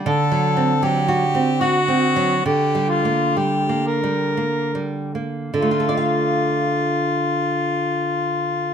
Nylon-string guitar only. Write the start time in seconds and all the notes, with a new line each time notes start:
0.06 D3
0.32 F#3
0.57 C4
0.83 F#3
1.08 F#4
1.35 C4
1.61 F#4
1.88 C4
2.16 F#3
2.46 D3
2.75 G3
3.05 A#3
3.37 G3
3.69 A#3
4.03 G3
4.37 A#3
4.75 G3
5.15 A#3
5.54 D3
5.62 A3
5.71 F4
5.80 A4
5.89 D5
5.97 F5